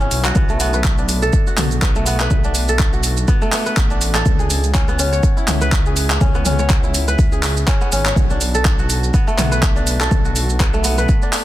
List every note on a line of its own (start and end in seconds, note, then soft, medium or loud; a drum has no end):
0.00 0.36 B3 loud
0.00 1.04 C#4 loud
0.00 1.33 E4 medium
0.00 0.40 G#4 medium
0.00 0.77 C#5 loud
0.00 shaker soft
0.11 0.32 B1 medium
0.11 open hi-hat medium
0.11 shaker medium
0.25 1.47 F#4 loud
0.25 clap medium
0.25 shaker soft
0.35 1.30 B1 loud
0.35 0.60 B3 loud
0.35 kick loud
0.35 mid tom medium
0.35 shaker medium
0.49 1.95 A3 loud
0.49 shaker soft
0.60 1.82 B3 loud
0.60 open hi-hat medium
0.60 shaker loud
0.73 1.96 B4 loud
0.73 shaker soft
0.84 kick loud
0.84 clap loud
0.84 shaker medium
0.98 2.44 D4 medium
0.98 shaker soft
1.09 open hi-hat loud
1.09 shaker medium
1.22 2.54 A4 loud
1.22 shaker soft
1.33 kick loud
1.33 shaker medium
1.47 2.93 F#4 medium
1.47 shaker soft
1.58 2.28 B1 loud
1.58 clap medium
1.58 open hi-hat loud
1.58 mid tom medium
1.58 shaker loud
1.71 shaker soft
1.82 2.07 B3 loud
1.82 kick loud
1.82 clap loud
1.82 shaker medium
1.95 3.41 A3 loud
1.95 shaker soft
2.06 3.27 B3 loud
2.06 open hi-hat medium
2.06 shaker medium
2.20 3.43 B4 loud
2.20 clap loud
2.20 shaker soft
2.31 3.25 B1 loud
2.31 kick loud
2.31 mid tom medium
2.31 shaker medium
2.44 3.90 D4 medium
2.44 shaker soft
2.55 open hi-hat medium
2.55 shaker loud
2.68 4.01 A4 loud
2.68 shaker soft
2.79 kick loud
2.79 clap medium
2.79 shaker medium
2.93 4.39 F#4 medium
2.93 shaker soft
3.04 open hi-hat medium
3.04 shaker loud
3.17 shaker soft
3.28 3.52 B3 loud
3.28 kick loud
3.28 shaker medium
3.42 4.45 A3 loud
3.42 shaker soft
3.52 4.88 B3 loud
3.52 clap medium
3.52 open hi-hat medium
3.52 shaker loud
3.66 4.89 B4 loud
3.66 shaker soft
3.77 4.23 A1 medium
3.77 kick loud
3.77 clap loud
3.77 shaker medium
3.90 4.80 D4 medium
3.90 shaker soft
4.01 open hi-hat medium
4.01 shaker loud
4.15 4.45 A4 loud
4.15 clap loud
4.15 shaker soft
4.26 5.20 C#2 loud
4.26 kick loud
4.26 mid tom medium
4.26 shaker medium
4.39 5.75 G#4 medium
4.39 shaker soft
4.50 open hi-hat medium
4.50 shaker loud
4.64 shaker soft
4.74 4.99 C#4 loud
4.74 kick loud
4.74 clap medium
4.74 shaker medium
4.88 6.34 B3 loud
4.88 shaker soft
4.99 6.21 C#4 loud
4.99 open hi-hat medium
4.99 shaker loud
5.12 6.27 C#5 loud
5.12 shaker soft
5.23 kick loud
5.23 shaker medium
5.37 6.83 E4 medium
5.37 shaker soft
5.48 6.18 C#2 loud
5.48 clap medium
5.48 open hi-hat medium
5.48 mid tom loud
5.48 shaker loud
5.61 6.84 B4 loud
5.61 shaker soft
5.72 kick loud
5.72 clap medium
5.72 shaker medium
5.86 7.23 G#4 medium
5.86 shaker soft
5.97 open hi-hat medium
5.97 shaker loud
6.10 clap loud
6.10 shaker soft
6.21 7.15 C#2 loud
6.21 6.46 C#4 loud
6.21 kick loud
6.21 mid tom medium
6.21 shaker medium
6.35 7.81 B3 loud
6.35 shaker soft
6.46 7.67 C#4 loud
6.46 open hi-hat medium
6.46 mid tom medium
6.46 shaker medium
6.59 7.74 C#5 loud
6.59 shaker soft
6.70 kick loud
6.70 clap medium
6.70 shaker medium
6.83 8.40 E4 medium
6.83 shaker soft
6.94 open hi-hat medium
6.94 shaker loud
7.08 8.31 B4 loud
7.08 shaker soft
7.19 7.64 C#2 medium
7.19 kick loud
7.19 shaker medium
7.32 8.61 G#4 medium
7.32 shaker soft
7.43 clap medium
7.43 open hi-hat medium
7.43 shaker loud
7.57 shaker soft
7.68 7.92 C#4 loud
7.68 kick loud
7.68 clap loud
7.68 shaker medium
7.81 9.14 B3 loud
7.81 shaker soft
7.92 8.13 G#1 medium
7.92 8.37 C#4 loud
7.92 open hi-hat medium
7.92 shaker medium
8.06 8.37 C#5 loud
8.06 clap loud
8.06 shaker soft
8.16 9.11 B1 loud
8.16 kick loud
8.16 mid tom medium
8.16 shaker medium
8.30 9.76 D4 medium
8.30 shaker soft
8.41 open hi-hat medium
8.41 shaker medium
8.55 9.86 A4 loud
8.55 shaker soft
8.65 kick loud
8.65 clap loud
8.65 shaker medium
8.79 10.25 F#4 medium
8.79 shaker soft
8.90 open hi-hat medium
8.90 shaker loud
9.03 shaker soft
9.14 9.38 B3 loud
9.14 kick loud
9.14 shaker medium
9.27 10.73 A3 loud
9.27 shaker soft
9.38 10.08 B1 loud
9.38 10.60 B3 loud
9.38 clap medium
9.38 open hi-hat medium
9.38 mid tom loud
9.38 shaker loud
9.52 10.75 B4 loud
9.52 shaker soft
9.63 kick loud
9.63 clap loud
9.63 shaker medium
9.76 11.22 D4 medium
9.76 shaker soft
9.87 open hi-hat medium
9.87 shaker medium
10.00 11.32 A4 loud
10.00 clap medium
10.00 shaker soft
10.11 11.06 B1 loud
10.11 kick loud
10.11 mid tom medium
10.11 shaker medium
10.25 11.44 F#4 medium
10.25 shaker soft
10.36 open hi-hat medium
10.36 shaker medium
10.49 shaker soft
10.60 10.84 B3 loud
10.60 kick loud
10.60 clap loud
10.60 shaker medium
10.74 11.44 A3 loud
10.74 shaker soft
10.84 11.44 B3 loud
10.84 open hi-hat medium
10.84 shaker loud
10.98 11.44 B4 loud
10.98 shaker soft
11.09 kick loud
11.09 shaker medium
11.22 11.44 D4 medium
11.22 shaker soft
11.33 clap medium
11.33 open hi-hat loud
11.33 shaker medium